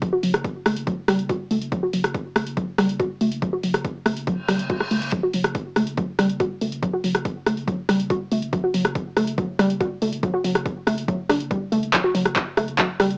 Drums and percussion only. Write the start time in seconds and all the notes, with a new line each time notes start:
0.02 kick, closed hi-hat
0.23 open hi-hat
0.34 cross-stick, closed hi-hat
0.44 kick, closed hi-hat
0.66 cross-stick, open hi-hat
0.76 closed hi-hat
0.87 kick, closed hi-hat
1.08 cross-stick, open hi-hat
1.19 closed hi-hat
1.29 kick, closed hi-hat
1.51 open hi-hat
1.62 closed hi-hat
1.72 kick, closed hi-hat
1.93 open hi-hat
2.04 cross-stick, closed hi-hat
2.14 kick, closed hi-hat
2.36 cross-stick, open hi-hat
2.47 closed hi-hat
2.57 kick, closed hi-hat
2.78 cross-stick, open hi-hat
2.89 closed hi-hat
3.00 kick, closed hi-hat
3.21 open hi-hat
3.32 closed hi-hat
3.42 kick, closed hi-hat
3.63 open hi-hat
3.74 cross-stick, closed hi-hat
3.85 kick, closed hi-hat
4.06 cross-stick, open hi-hat
4.17 closed hi-hat
4.27 kick, closed hi-hat
4.49 cross-stick, open hi-hat
4.59 closed hi-hat
4.70 kick, closed hi-hat
4.81 cross-stick
4.91 open hi-hat
5.02 closed hi-hat
5.12 kick, closed hi-hat
5.34 open hi-hat
5.44 cross-stick, closed hi-hat
5.55 kick, closed hi-hat
5.76 cross-stick, open hi-hat
5.87 closed hi-hat
5.97 kick, closed hi-hat
6.19 cross-stick, open hi-hat
6.29 closed hi-hat
6.40 kick, closed hi-hat
6.61 open hi-hat
6.72 closed hi-hat
6.82 kick, closed hi-hat
7.04 open hi-hat
7.15 cross-stick, closed hi-hat
7.25 kick, closed hi-hat
7.46 cross-stick, open hi-hat
7.57 closed hi-hat
7.68 kick, closed hi-hat
7.89 cross-stick, open hi-hat
8.00 closed hi-hat
8.10 kick, closed hi-hat
8.32 open hi-hat
8.42 closed hi-hat
8.53 kick, closed hi-hat
8.74 open hi-hat
8.85 cross-stick, closed hi-hat
8.95 kick, closed hi-hat
9.17 cross-stick, open hi-hat
9.27 closed hi-hat
9.38 kick, closed hi-hat
9.59 cross-stick, open hi-hat
9.70 closed hi-hat
9.80 kick, closed hi-hat
10.02 open hi-hat
10.13 closed hi-hat
10.23 kick, closed hi-hat
10.44 open hi-hat
10.55 cross-stick, closed hi-hat
10.66 kick, closed hi-hat
10.87 cross-stick, open hi-hat
10.98 closed hi-hat
11.08 kick, closed hi-hat
11.29 cross-stick, open hi-hat
11.40 closed hi-hat
11.51 kick, closed hi-hat
11.72 open hi-hat
11.83 closed hi-hat
11.93 kick, clap, closed hi-hat
12.15 open hi-hat
12.25 cross-stick, closed hi-hat
12.36 kick, clap, closed hi-hat
12.57 cross-stick, open hi-hat
12.68 closed hi-hat
12.78 kick, clap, closed hi-hat
13.00 cross-stick, open hi-hat
13.10 closed hi-hat